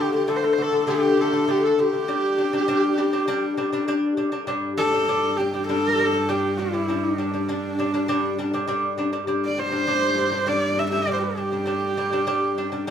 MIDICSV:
0, 0, Header, 1, 5, 480
1, 0, Start_track
1, 0, Tempo, 600000
1, 1667, Time_signature, 4, 2, 24, 8
1, 10323, End_track
2, 0, Start_track
2, 0, Title_t, "Horsehead fiddle"
2, 0, Program_c, 0, 110
2, 9, Note_on_c, 0, 67, 94
2, 119, Note_off_c, 0, 67, 0
2, 133, Note_on_c, 0, 67, 76
2, 233, Note_on_c, 0, 69, 84
2, 245, Note_off_c, 0, 67, 0
2, 292, Note_on_c, 0, 72, 84
2, 304, Note_off_c, 0, 69, 0
2, 351, Note_on_c, 0, 69, 78
2, 363, Note_off_c, 0, 72, 0
2, 423, Note_on_c, 0, 72, 87
2, 435, Note_off_c, 0, 69, 0
2, 495, Note_on_c, 0, 69, 89
2, 507, Note_off_c, 0, 72, 0
2, 721, Note_on_c, 0, 67, 107
2, 733, Note_off_c, 0, 69, 0
2, 967, Note_on_c, 0, 69, 95
2, 979, Note_off_c, 0, 67, 0
2, 1204, Note_on_c, 0, 67, 93
2, 1216, Note_off_c, 0, 69, 0
2, 1324, Note_on_c, 0, 69, 82
2, 1336, Note_off_c, 0, 67, 0
2, 1433, Note_on_c, 0, 67, 89
2, 1445, Note_off_c, 0, 69, 0
2, 3110, Note_off_c, 0, 67, 0
2, 3820, Note_on_c, 0, 69, 104
2, 4297, Note_on_c, 0, 67, 88
2, 4309, Note_off_c, 0, 69, 0
2, 4537, Note_off_c, 0, 67, 0
2, 4542, Note_on_c, 0, 69, 113
2, 5028, Note_on_c, 0, 67, 91
2, 5040, Note_off_c, 0, 69, 0
2, 5269, Note_on_c, 0, 64, 87
2, 5281, Note_off_c, 0, 67, 0
2, 5631, Note_on_c, 0, 62, 77
2, 5643, Note_off_c, 0, 64, 0
2, 7186, Note_off_c, 0, 62, 0
2, 7558, Note_on_c, 0, 74, 85
2, 7677, Note_on_c, 0, 72, 107
2, 7689, Note_off_c, 0, 74, 0
2, 8388, Note_on_c, 0, 74, 106
2, 8400, Note_off_c, 0, 72, 0
2, 8633, Note_on_c, 0, 76, 96
2, 8645, Note_off_c, 0, 74, 0
2, 8715, Note_off_c, 0, 76, 0
2, 8719, Note_on_c, 0, 76, 102
2, 8817, Note_on_c, 0, 74, 93
2, 8829, Note_off_c, 0, 76, 0
2, 8904, Note_off_c, 0, 74, 0
2, 8909, Note_on_c, 0, 72, 90
2, 8977, Note_off_c, 0, 72, 0
2, 8982, Note_on_c, 0, 67, 86
2, 10323, Note_off_c, 0, 67, 0
2, 10323, End_track
3, 0, Start_track
3, 0, Title_t, "Dizi"
3, 0, Program_c, 1, 73
3, 0, Note_on_c, 1, 67, 73
3, 101, Note_off_c, 1, 67, 0
3, 106, Note_on_c, 1, 67, 59
3, 218, Note_off_c, 1, 67, 0
3, 489, Note_on_c, 1, 69, 87
3, 709, Note_on_c, 1, 67, 84
3, 721, Note_off_c, 1, 69, 0
3, 760, Note_on_c, 1, 69, 69
3, 772, Note_off_c, 1, 67, 0
3, 824, Note_on_c, 1, 67, 84
3, 836, Note_off_c, 1, 69, 0
3, 1182, Note_off_c, 1, 67, 0
3, 1187, Note_on_c, 1, 67, 86
3, 1306, Note_on_c, 1, 69, 82
3, 1318, Note_off_c, 1, 67, 0
3, 1438, Note_on_c, 1, 67, 76
3, 1450, Note_off_c, 1, 69, 0
3, 3113, Note_off_c, 1, 67, 0
3, 10323, End_track
4, 0, Start_track
4, 0, Title_t, "Lute"
4, 0, Program_c, 2, 24
4, 99, Note_on_c, 2, 50, 74
4, 103, Note_on_c, 2, 57, 76
4, 200, Note_off_c, 2, 50, 0
4, 202, Note_off_c, 2, 57, 0
4, 219, Note_on_c, 2, 50, 83
4, 223, Note_on_c, 2, 57, 103
4, 415, Note_off_c, 2, 50, 0
4, 417, Note_off_c, 2, 57, 0
4, 460, Note_on_c, 2, 50, 74
4, 467, Note_on_c, 2, 57, 84
4, 560, Note_off_c, 2, 50, 0
4, 563, Note_off_c, 2, 57, 0
4, 575, Note_on_c, 2, 50, 67
4, 583, Note_on_c, 2, 57, 74
4, 677, Note_off_c, 2, 50, 0
4, 681, Note_off_c, 2, 57, 0
4, 695, Note_on_c, 2, 50, 100
4, 701, Note_on_c, 2, 57, 103
4, 893, Note_off_c, 2, 50, 0
4, 896, Note_off_c, 2, 57, 0
4, 935, Note_on_c, 2, 50, 77
4, 942, Note_on_c, 2, 57, 83
4, 1037, Note_off_c, 2, 50, 0
4, 1041, Note_off_c, 2, 57, 0
4, 1059, Note_on_c, 2, 50, 73
4, 1066, Note_on_c, 2, 57, 85
4, 1159, Note_off_c, 2, 50, 0
4, 1162, Note_off_c, 2, 57, 0
4, 1180, Note_on_c, 2, 50, 88
4, 1187, Note_on_c, 2, 57, 97
4, 1376, Note_off_c, 2, 50, 0
4, 1379, Note_off_c, 2, 57, 0
4, 1425, Note_on_c, 2, 50, 68
4, 1429, Note_on_c, 2, 57, 72
4, 1522, Note_off_c, 2, 50, 0
4, 1524, Note_off_c, 2, 57, 0
4, 1540, Note_on_c, 2, 50, 60
4, 1546, Note_on_c, 2, 57, 64
4, 1640, Note_off_c, 2, 50, 0
4, 1643, Note_off_c, 2, 57, 0
4, 1665, Note_on_c, 2, 55, 89
4, 1669, Note_on_c, 2, 62, 93
4, 1858, Note_off_c, 2, 55, 0
4, 1860, Note_off_c, 2, 62, 0
4, 1904, Note_on_c, 2, 55, 68
4, 1908, Note_on_c, 2, 62, 78
4, 2001, Note_off_c, 2, 55, 0
4, 2003, Note_off_c, 2, 62, 0
4, 2024, Note_on_c, 2, 55, 86
4, 2030, Note_on_c, 2, 62, 81
4, 2122, Note_off_c, 2, 55, 0
4, 2125, Note_off_c, 2, 62, 0
4, 2143, Note_on_c, 2, 55, 117
4, 2149, Note_on_c, 2, 62, 109
4, 2337, Note_off_c, 2, 55, 0
4, 2340, Note_off_c, 2, 62, 0
4, 2382, Note_on_c, 2, 55, 86
4, 2386, Note_on_c, 2, 62, 90
4, 2481, Note_off_c, 2, 55, 0
4, 2482, Note_off_c, 2, 62, 0
4, 2502, Note_on_c, 2, 55, 72
4, 2506, Note_on_c, 2, 62, 92
4, 2601, Note_off_c, 2, 55, 0
4, 2602, Note_off_c, 2, 62, 0
4, 2621, Note_on_c, 2, 55, 115
4, 2625, Note_on_c, 2, 62, 126
4, 2816, Note_off_c, 2, 55, 0
4, 2818, Note_off_c, 2, 62, 0
4, 2859, Note_on_c, 2, 55, 87
4, 2866, Note_on_c, 2, 62, 91
4, 2959, Note_off_c, 2, 55, 0
4, 2962, Note_off_c, 2, 62, 0
4, 2981, Note_on_c, 2, 55, 85
4, 2987, Note_on_c, 2, 62, 100
4, 3080, Note_off_c, 2, 55, 0
4, 3083, Note_off_c, 2, 62, 0
4, 3102, Note_on_c, 2, 55, 105
4, 3106, Note_on_c, 2, 62, 119
4, 3296, Note_off_c, 2, 55, 0
4, 3299, Note_off_c, 2, 62, 0
4, 3337, Note_on_c, 2, 55, 83
4, 3344, Note_on_c, 2, 62, 77
4, 3438, Note_off_c, 2, 55, 0
4, 3442, Note_off_c, 2, 62, 0
4, 3454, Note_on_c, 2, 55, 76
4, 3458, Note_on_c, 2, 62, 82
4, 3557, Note_off_c, 2, 55, 0
4, 3559, Note_off_c, 2, 62, 0
4, 3576, Note_on_c, 2, 55, 103
4, 3583, Note_on_c, 2, 62, 103
4, 3774, Note_off_c, 2, 55, 0
4, 3777, Note_off_c, 2, 62, 0
4, 3819, Note_on_c, 2, 55, 69
4, 3827, Note_on_c, 2, 62, 74
4, 3919, Note_off_c, 2, 55, 0
4, 3923, Note_off_c, 2, 62, 0
4, 3948, Note_on_c, 2, 55, 67
4, 3956, Note_on_c, 2, 62, 75
4, 4044, Note_off_c, 2, 55, 0
4, 4048, Note_off_c, 2, 62, 0
4, 4065, Note_on_c, 2, 55, 84
4, 4071, Note_on_c, 2, 62, 99
4, 4258, Note_off_c, 2, 55, 0
4, 4261, Note_off_c, 2, 62, 0
4, 4310, Note_on_c, 2, 55, 63
4, 4316, Note_on_c, 2, 62, 79
4, 4405, Note_off_c, 2, 55, 0
4, 4408, Note_off_c, 2, 62, 0
4, 4428, Note_on_c, 2, 55, 64
4, 4433, Note_on_c, 2, 62, 74
4, 4524, Note_off_c, 2, 55, 0
4, 4526, Note_off_c, 2, 62, 0
4, 4552, Note_on_c, 2, 55, 94
4, 4557, Note_on_c, 2, 62, 96
4, 4742, Note_off_c, 2, 55, 0
4, 4744, Note_off_c, 2, 62, 0
4, 4791, Note_on_c, 2, 55, 71
4, 4796, Note_on_c, 2, 62, 79
4, 4886, Note_off_c, 2, 55, 0
4, 4887, Note_off_c, 2, 62, 0
4, 4904, Note_on_c, 2, 55, 69
4, 4911, Note_on_c, 2, 62, 81
4, 5002, Note_off_c, 2, 55, 0
4, 5006, Note_off_c, 2, 62, 0
4, 5029, Note_on_c, 2, 55, 86
4, 5035, Note_on_c, 2, 62, 86
4, 5220, Note_off_c, 2, 55, 0
4, 5223, Note_off_c, 2, 62, 0
4, 5267, Note_on_c, 2, 55, 67
4, 5274, Note_on_c, 2, 62, 77
4, 5364, Note_off_c, 2, 55, 0
4, 5367, Note_off_c, 2, 62, 0
4, 5386, Note_on_c, 2, 55, 60
4, 5393, Note_on_c, 2, 62, 70
4, 5483, Note_off_c, 2, 55, 0
4, 5486, Note_off_c, 2, 62, 0
4, 5506, Note_on_c, 2, 55, 76
4, 5515, Note_on_c, 2, 62, 89
4, 5699, Note_off_c, 2, 55, 0
4, 5704, Note_off_c, 2, 62, 0
4, 5746, Note_on_c, 2, 55, 76
4, 5754, Note_on_c, 2, 62, 73
4, 5843, Note_off_c, 2, 55, 0
4, 5847, Note_off_c, 2, 62, 0
4, 5868, Note_on_c, 2, 55, 69
4, 5874, Note_on_c, 2, 62, 71
4, 5964, Note_off_c, 2, 55, 0
4, 5967, Note_off_c, 2, 62, 0
4, 5988, Note_on_c, 2, 55, 81
4, 5993, Note_on_c, 2, 62, 105
4, 6180, Note_off_c, 2, 55, 0
4, 6182, Note_off_c, 2, 62, 0
4, 6229, Note_on_c, 2, 55, 76
4, 6236, Note_on_c, 2, 62, 93
4, 6324, Note_off_c, 2, 55, 0
4, 6328, Note_off_c, 2, 62, 0
4, 6350, Note_on_c, 2, 55, 83
4, 6355, Note_on_c, 2, 62, 92
4, 6445, Note_off_c, 2, 55, 0
4, 6448, Note_off_c, 2, 62, 0
4, 6466, Note_on_c, 2, 55, 109
4, 6472, Note_on_c, 2, 62, 125
4, 6659, Note_off_c, 2, 55, 0
4, 6662, Note_off_c, 2, 62, 0
4, 6709, Note_on_c, 2, 55, 87
4, 6714, Note_on_c, 2, 62, 102
4, 6804, Note_off_c, 2, 55, 0
4, 6806, Note_off_c, 2, 62, 0
4, 6827, Note_on_c, 2, 55, 85
4, 6834, Note_on_c, 2, 62, 90
4, 6923, Note_off_c, 2, 55, 0
4, 6926, Note_off_c, 2, 62, 0
4, 6940, Note_on_c, 2, 55, 97
4, 6947, Note_on_c, 2, 62, 119
4, 7135, Note_off_c, 2, 55, 0
4, 7139, Note_off_c, 2, 62, 0
4, 7181, Note_on_c, 2, 55, 80
4, 7188, Note_on_c, 2, 62, 89
4, 7280, Note_off_c, 2, 55, 0
4, 7284, Note_off_c, 2, 62, 0
4, 7301, Note_on_c, 2, 55, 78
4, 7304, Note_on_c, 2, 62, 81
4, 7400, Note_off_c, 2, 55, 0
4, 7402, Note_off_c, 2, 62, 0
4, 7418, Note_on_c, 2, 55, 81
4, 7424, Note_on_c, 2, 62, 88
4, 7614, Note_off_c, 2, 55, 0
4, 7617, Note_off_c, 2, 62, 0
4, 7660, Note_on_c, 2, 55, 64
4, 7666, Note_on_c, 2, 62, 79
4, 7759, Note_off_c, 2, 55, 0
4, 7762, Note_off_c, 2, 62, 0
4, 7774, Note_on_c, 2, 55, 70
4, 7779, Note_on_c, 2, 62, 67
4, 7876, Note_off_c, 2, 55, 0
4, 7879, Note_off_c, 2, 62, 0
4, 7896, Note_on_c, 2, 55, 90
4, 7902, Note_on_c, 2, 62, 97
4, 8093, Note_off_c, 2, 55, 0
4, 8096, Note_off_c, 2, 62, 0
4, 8133, Note_on_c, 2, 55, 69
4, 8141, Note_on_c, 2, 62, 73
4, 8236, Note_off_c, 2, 55, 0
4, 8239, Note_off_c, 2, 62, 0
4, 8251, Note_on_c, 2, 55, 69
4, 8258, Note_on_c, 2, 62, 77
4, 8354, Note_off_c, 2, 55, 0
4, 8358, Note_off_c, 2, 62, 0
4, 8372, Note_on_c, 2, 55, 95
4, 8377, Note_on_c, 2, 62, 105
4, 8571, Note_off_c, 2, 55, 0
4, 8573, Note_off_c, 2, 62, 0
4, 8616, Note_on_c, 2, 55, 72
4, 8624, Note_on_c, 2, 62, 81
4, 8717, Note_off_c, 2, 55, 0
4, 8721, Note_off_c, 2, 62, 0
4, 8727, Note_on_c, 2, 55, 70
4, 8737, Note_on_c, 2, 62, 83
4, 8832, Note_off_c, 2, 55, 0
4, 8837, Note_off_c, 2, 62, 0
4, 8855, Note_on_c, 2, 55, 94
4, 8860, Note_on_c, 2, 62, 89
4, 9052, Note_off_c, 2, 55, 0
4, 9055, Note_off_c, 2, 62, 0
4, 9096, Note_on_c, 2, 55, 58
4, 9101, Note_on_c, 2, 62, 71
4, 9196, Note_off_c, 2, 55, 0
4, 9199, Note_off_c, 2, 62, 0
4, 9215, Note_on_c, 2, 55, 59
4, 9221, Note_on_c, 2, 62, 66
4, 9316, Note_off_c, 2, 55, 0
4, 9319, Note_off_c, 2, 62, 0
4, 9326, Note_on_c, 2, 55, 77
4, 9336, Note_on_c, 2, 62, 87
4, 9527, Note_off_c, 2, 55, 0
4, 9532, Note_off_c, 2, 62, 0
4, 9578, Note_on_c, 2, 55, 85
4, 9584, Note_on_c, 2, 62, 87
4, 9677, Note_off_c, 2, 55, 0
4, 9680, Note_off_c, 2, 62, 0
4, 9700, Note_on_c, 2, 55, 82
4, 9706, Note_on_c, 2, 62, 90
4, 9798, Note_off_c, 2, 55, 0
4, 9801, Note_off_c, 2, 62, 0
4, 9814, Note_on_c, 2, 55, 105
4, 9820, Note_on_c, 2, 62, 114
4, 10011, Note_off_c, 2, 55, 0
4, 10014, Note_off_c, 2, 62, 0
4, 10061, Note_on_c, 2, 55, 78
4, 10065, Note_on_c, 2, 62, 89
4, 10158, Note_off_c, 2, 55, 0
4, 10160, Note_off_c, 2, 62, 0
4, 10175, Note_on_c, 2, 55, 81
4, 10181, Note_on_c, 2, 62, 75
4, 10275, Note_off_c, 2, 55, 0
4, 10278, Note_off_c, 2, 62, 0
4, 10298, Note_on_c, 2, 55, 107
4, 10323, Note_off_c, 2, 55, 0
4, 10323, End_track
5, 0, Start_track
5, 0, Title_t, "Cello"
5, 0, Program_c, 3, 42
5, 3591, Note_on_c, 3, 43, 72
5, 7438, Note_off_c, 3, 43, 0
5, 7442, Note_on_c, 3, 43, 74
5, 10323, Note_off_c, 3, 43, 0
5, 10323, End_track
0, 0, End_of_file